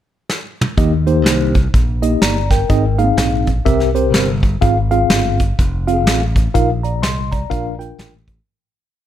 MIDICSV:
0, 0, Header, 1, 4, 480
1, 0, Start_track
1, 0, Key_signature, -3, "major"
1, 0, Tempo, 480000
1, 779, Time_signature, 4, 2, 24, 8
1, 9061, End_track
2, 0, Start_track
2, 0, Title_t, "Tine electric piano"
2, 0, Program_c, 0, 4
2, 776, Note_on_c, 0, 51, 64
2, 776, Note_on_c, 0, 63, 68
2, 777, Note_on_c, 0, 58, 73
2, 777, Note_on_c, 0, 67, 72
2, 778, Note_on_c, 0, 75, 81
2, 923, Note_off_c, 0, 58, 0
2, 923, Note_off_c, 0, 63, 0
2, 923, Note_off_c, 0, 67, 0
2, 924, Note_off_c, 0, 75, 0
2, 1066, Note_on_c, 0, 58, 71
2, 1067, Note_on_c, 0, 63, 70
2, 1068, Note_on_c, 0, 67, 65
2, 1068, Note_on_c, 0, 72, 76
2, 1507, Note_off_c, 0, 51, 0
2, 1547, Note_off_c, 0, 58, 0
2, 1548, Note_off_c, 0, 63, 0
2, 1549, Note_off_c, 0, 67, 0
2, 1549, Note_off_c, 0, 72, 0
2, 2022, Note_on_c, 0, 63, 59
2, 2023, Note_on_c, 0, 58, 67
2, 2024, Note_on_c, 0, 67, 55
2, 2025, Note_on_c, 0, 75, 73
2, 2217, Note_off_c, 0, 75, 0
2, 2217, Note_on_c, 0, 82, 60
2, 2222, Note_on_c, 0, 74, 49
2, 2361, Note_off_c, 0, 63, 0
2, 2362, Note_off_c, 0, 58, 0
2, 2362, Note_off_c, 0, 67, 0
2, 2494, Note_off_c, 0, 82, 0
2, 2496, Note_off_c, 0, 74, 0
2, 2507, Note_on_c, 0, 79, 62
2, 2514, Note_on_c, 0, 70, 54
2, 2693, Note_on_c, 0, 44, 68
2, 2695, Note_on_c, 0, 60, 70
2, 2697, Note_on_c, 0, 63, 75
2, 2697, Note_on_c, 0, 68, 69
2, 2697, Note_on_c, 0, 75, 83
2, 2843, Note_off_c, 0, 60, 0
2, 2844, Note_off_c, 0, 63, 0
2, 2844, Note_off_c, 0, 68, 0
2, 2844, Note_off_c, 0, 75, 0
2, 2965, Note_off_c, 0, 79, 0
2, 2968, Note_off_c, 0, 70, 0
2, 2984, Note_on_c, 0, 58, 60
2, 2984, Note_on_c, 0, 63, 74
2, 2985, Note_on_c, 0, 68, 70
2, 2985, Note_on_c, 0, 77, 80
2, 3033, Note_off_c, 0, 58, 0
2, 3042, Note_on_c, 0, 60, 73
2, 3428, Note_off_c, 0, 44, 0
2, 3468, Note_off_c, 0, 63, 0
2, 3469, Note_off_c, 0, 68, 0
2, 3469, Note_off_c, 0, 77, 0
2, 3497, Note_off_c, 0, 60, 0
2, 3652, Note_on_c, 0, 60, 88
2, 3653, Note_on_c, 0, 48, 70
2, 3653, Note_on_c, 0, 67, 84
2, 3654, Note_on_c, 0, 70, 79
2, 3655, Note_on_c, 0, 76, 92
2, 3890, Note_off_c, 0, 60, 0
2, 3890, Note_off_c, 0, 67, 0
2, 3890, Note_off_c, 0, 70, 0
2, 3891, Note_off_c, 0, 76, 0
2, 3948, Note_on_c, 0, 60, 65
2, 3948, Note_on_c, 0, 67, 66
2, 3949, Note_on_c, 0, 72, 70
2, 3950, Note_on_c, 0, 70, 59
2, 4286, Note_off_c, 0, 60, 0
2, 4286, Note_off_c, 0, 67, 0
2, 4287, Note_off_c, 0, 70, 0
2, 4287, Note_off_c, 0, 72, 0
2, 4389, Note_off_c, 0, 48, 0
2, 4611, Note_on_c, 0, 60, 75
2, 4614, Note_on_c, 0, 44, 67
2, 4614, Note_on_c, 0, 65, 65
2, 4614, Note_on_c, 0, 68, 67
2, 4614, Note_on_c, 0, 77, 85
2, 4763, Note_off_c, 0, 60, 0
2, 4764, Note_off_c, 0, 65, 0
2, 4764, Note_off_c, 0, 68, 0
2, 4764, Note_off_c, 0, 77, 0
2, 4908, Note_on_c, 0, 60, 72
2, 4909, Note_on_c, 0, 68, 68
2, 4910, Note_on_c, 0, 65, 69
2, 4910, Note_on_c, 0, 77, 90
2, 5350, Note_off_c, 0, 44, 0
2, 5392, Note_off_c, 0, 60, 0
2, 5393, Note_off_c, 0, 65, 0
2, 5393, Note_off_c, 0, 68, 0
2, 5393, Note_off_c, 0, 77, 0
2, 5873, Note_on_c, 0, 65, 61
2, 5873, Note_on_c, 0, 67, 44
2, 5874, Note_on_c, 0, 60, 70
2, 5875, Note_on_c, 0, 77, 72
2, 5920, Note_off_c, 0, 67, 0
2, 5931, Note_on_c, 0, 68, 59
2, 6210, Note_off_c, 0, 65, 0
2, 6211, Note_off_c, 0, 60, 0
2, 6211, Note_off_c, 0, 77, 0
2, 6239, Note_off_c, 0, 68, 0
2, 6543, Note_on_c, 0, 65, 68
2, 6544, Note_on_c, 0, 46, 68
2, 6544, Note_on_c, 0, 63, 78
2, 6544, Note_on_c, 0, 70, 68
2, 6544, Note_on_c, 0, 77, 81
2, 6689, Note_off_c, 0, 65, 0
2, 6690, Note_off_c, 0, 63, 0
2, 6690, Note_off_c, 0, 70, 0
2, 6690, Note_off_c, 0, 77, 0
2, 6834, Note_on_c, 0, 82, 53
2, 6842, Note_on_c, 0, 74, 47
2, 7015, Note_off_c, 0, 82, 0
2, 7020, Note_off_c, 0, 74, 0
2, 7025, Note_on_c, 0, 84, 65
2, 7033, Note_on_c, 0, 75, 51
2, 7275, Note_off_c, 0, 46, 0
2, 7300, Note_off_c, 0, 84, 0
2, 7305, Note_off_c, 0, 75, 0
2, 7316, Note_on_c, 0, 82, 54
2, 7321, Note_on_c, 0, 74, 47
2, 7500, Note_on_c, 0, 62, 83
2, 7501, Note_on_c, 0, 65, 73
2, 7502, Note_on_c, 0, 77, 92
2, 7503, Note_on_c, 0, 46, 68
2, 7504, Note_on_c, 0, 70, 73
2, 7734, Note_off_c, 0, 62, 0
2, 7735, Note_off_c, 0, 65, 0
2, 7735, Note_off_c, 0, 77, 0
2, 7736, Note_off_c, 0, 70, 0
2, 7771, Note_off_c, 0, 82, 0
2, 7774, Note_off_c, 0, 74, 0
2, 7788, Note_on_c, 0, 62, 57
2, 7788, Note_on_c, 0, 65, 57
2, 7790, Note_on_c, 0, 70, 60
2, 7791, Note_on_c, 0, 79, 69
2, 8126, Note_off_c, 0, 62, 0
2, 8126, Note_off_c, 0, 65, 0
2, 8127, Note_off_c, 0, 70, 0
2, 8127, Note_off_c, 0, 79, 0
2, 8232, Note_off_c, 0, 46, 0
2, 9061, End_track
3, 0, Start_track
3, 0, Title_t, "Fingered electric bass"
3, 0, Program_c, 1, 33
3, 774, Note_on_c, 1, 39, 96
3, 1254, Note_off_c, 1, 39, 0
3, 1254, Note_on_c, 1, 36, 77
3, 1664, Note_off_c, 1, 36, 0
3, 1739, Note_on_c, 1, 34, 82
3, 2147, Note_off_c, 1, 34, 0
3, 2216, Note_on_c, 1, 31, 79
3, 2626, Note_off_c, 1, 31, 0
3, 2697, Note_on_c, 1, 32, 82
3, 3107, Note_off_c, 1, 32, 0
3, 3172, Note_on_c, 1, 34, 89
3, 3585, Note_off_c, 1, 34, 0
3, 3663, Note_on_c, 1, 36, 87
3, 4137, Note_off_c, 1, 36, 0
3, 4137, Note_on_c, 1, 31, 82
3, 4548, Note_off_c, 1, 31, 0
3, 4620, Note_on_c, 1, 32, 93
3, 5030, Note_off_c, 1, 32, 0
3, 5097, Note_on_c, 1, 31, 80
3, 5509, Note_off_c, 1, 31, 0
3, 5587, Note_on_c, 1, 29, 93
3, 6064, Note_off_c, 1, 29, 0
3, 6064, Note_on_c, 1, 33, 93
3, 6473, Note_off_c, 1, 33, 0
3, 6550, Note_on_c, 1, 34, 87
3, 7029, Note_off_c, 1, 34, 0
3, 7029, Note_on_c, 1, 36, 84
3, 7435, Note_off_c, 1, 36, 0
3, 7510, Note_on_c, 1, 34, 88
3, 7915, Note_off_c, 1, 34, 0
3, 7986, Note_on_c, 1, 33, 89
3, 8392, Note_off_c, 1, 33, 0
3, 9061, End_track
4, 0, Start_track
4, 0, Title_t, "Drums"
4, 295, Note_on_c, 9, 38, 60
4, 395, Note_off_c, 9, 38, 0
4, 613, Note_on_c, 9, 47, 74
4, 713, Note_off_c, 9, 47, 0
4, 775, Note_on_c, 9, 42, 71
4, 777, Note_on_c, 9, 36, 95
4, 875, Note_off_c, 9, 42, 0
4, 877, Note_off_c, 9, 36, 0
4, 1070, Note_on_c, 9, 42, 56
4, 1170, Note_off_c, 9, 42, 0
4, 1259, Note_on_c, 9, 38, 94
4, 1264, Note_on_c, 9, 42, 79
4, 1359, Note_off_c, 9, 38, 0
4, 1364, Note_off_c, 9, 42, 0
4, 1545, Note_on_c, 9, 42, 56
4, 1552, Note_on_c, 9, 36, 82
4, 1645, Note_off_c, 9, 42, 0
4, 1652, Note_off_c, 9, 36, 0
4, 1740, Note_on_c, 9, 36, 103
4, 1741, Note_on_c, 9, 42, 66
4, 1840, Note_off_c, 9, 36, 0
4, 1841, Note_off_c, 9, 42, 0
4, 2027, Note_on_c, 9, 42, 68
4, 2127, Note_off_c, 9, 42, 0
4, 2217, Note_on_c, 9, 38, 90
4, 2219, Note_on_c, 9, 42, 88
4, 2317, Note_off_c, 9, 38, 0
4, 2319, Note_off_c, 9, 42, 0
4, 2506, Note_on_c, 9, 36, 86
4, 2506, Note_on_c, 9, 42, 58
4, 2509, Note_on_c, 9, 38, 32
4, 2606, Note_off_c, 9, 36, 0
4, 2606, Note_off_c, 9, 42, 0
4, 2609, Note_off_c, 9, 38, 0
4, 2695, Note_on_c, 9, 42, 71
4, 2698, Note_on_c, 9, 36, 90
4, 2795, Note_off_c, 9, 42, 0
4, 2798, Note_off_c, 9, 36, 0
4, 2986, Note_on_c, 9, 42, 54
4, 3086, Note_off_c, 9, 42, 0
4, 3177, Note_on_c, 9, 38, 91
4, 3181, Note_on_c, 9, 42, 86
4, 3277, Note_off_c, 9, 38, 0
4, 3281, Note_off_c, 9, 42, 0
4, 3467, Note_on_c, 9, 42, 56
4, 3474, Note_on_c, 9, 36, 70
4, 3567, Note_off_c, 9, 42, 0
4, 3574, Note_off_c, 9, 36, 0
4, 3662, Note_on_c, 9, 36, 93
4, 3666, Note_on_c, 9, 42, 67
4, 3762, Note_off_c, 9, 36, 0
4, 3766, Note_off_c, 9, 42, 0
4, 3802, Note_on_c, 9, 38, 30
4, 3902, Note_off_c, 9, 38, 0
4, 3953, Note_on_c, 9, 42, 71
4, 4053, Note_off_c, 9, 42, 0
4, 4139, Note_on_c, 9, 38, 92
4, 4141, Note_on_c, 9, 42, 86
4, 4239, Note_off_c, 9, 38, 0
4, 4241, Note_off_c, 9, 42, 0
4, 4428, Note_on_c, 9, 42, 52
4, 4429, Note_on_c, 9, 36, 75
4, 4528, Note_off_c, 9, 42, 0
4, 4529, Note_off_c, 9, 36, 0
4, 4618, Note_on_c, 9, 42, 69
4, 4620, Note_on_c, 9, 36, 83
4, 4718, Note_off_c, 9, 42, 0
4, 4720, Note_off_c, 9, 36, 0
4, 4911, Note_on_c, 9, 42, 53
4, 5011, Note_off_c, 9, 42, 0
4, 5099, Note_on_c, 9, 38, 91
4, 5104, Note_on_c, 9, 42, 72
4, 5199, Note_off_c, 9, 38, 0
4, 5204, Note_off_c, 9, 42, 0
4, 5393, Note_on_c, 9, 42, 64
4, 5400, Note_on_c, 9, 36, 76
4, 5493, Note_off_c, 9, 42, 0
4, 5499, Note_off_c, 9, 36, 0
4, 5588, Note_on_c, 9, 36, 90
4, 5591, Note_on_c, 9, 42, 69
4, 5688, Note_off_c, 9, 36, 0
4, 5691, Note_off_c, 9, 42, 0
4, 5880, Note_on_c, 9, 42, 63
4, 5980, Note_off_c, 9, 42, 0
4, 6069, Note_on_c, 9, 38, 94
4, 6071, Note_on_c, 9, 42, 79
4, 6169, Note_off_c, 9, 38, 0
4, 6171, Note_off_c, 9, 42, 0
4, 6358, Note_on_c, 9, 36, 82
4, 6361, Note_on_c, 9, 42, 58
4, 6458, Note_off_c, 9, 36, 0
4, 6461, Note_off_c, 9, 42, 0
4, 6550, Note_on_c, 9, 36, 83
4, 6550, Note_on_c, 9, 42, 71
4, 6650, Note_off_c, 9, 36, 0
4, 6650, Note_off_c, 9, 42, 0
4, 6842, Note_on_c, 9, 42, 54
4, 6942, Note_off_c, 9, 42, 0
4, 7032, Note_on_c, 9, 38, 95
4, 7036, Note_on_c, 9, 42, 80
4, 7132, Note_off_c, 9, 38, 0
4, 7136, Note_off_c, 9, 42, 0
4, 7318, Note_on_c, 9, 42, 65
4, 7325, Note_on_c, 9, 36, 81
4, 7418, Note_off_c, 9, 42, 0
4, 7425, Note_off_c, 9, 36, 0
4, 7513, Note_on_c, 9, 36, 89
4, 7515, Note_on_c, 9, 42, 69
4, 7613, Note_off_c, 9, 36, 0
4, 7615, Note_off_c, 9, 42, 0
4, 7806, Note_on_c, 9, 42, 69
4, 7906, Note_off_c, 9, 42, 0
4, 7992, Note_on_c, 9, 38, 90
4, 7994, Note_on_c, 9, 42, 83
4, 8092, Note_off_c, 9, 38, 0
4, 8094, Note_off_c, 9, 42, 0
4, 8277, Note_on_c, 9, 36, 81
4, 8278, Note_on_c, 9, 42, 56
4, 8377, Note_off_c, 9, 36, 0
4, 8377, Note_off_c, 9, 42, 0
4, 9061, End_track
0, 0, End_of_file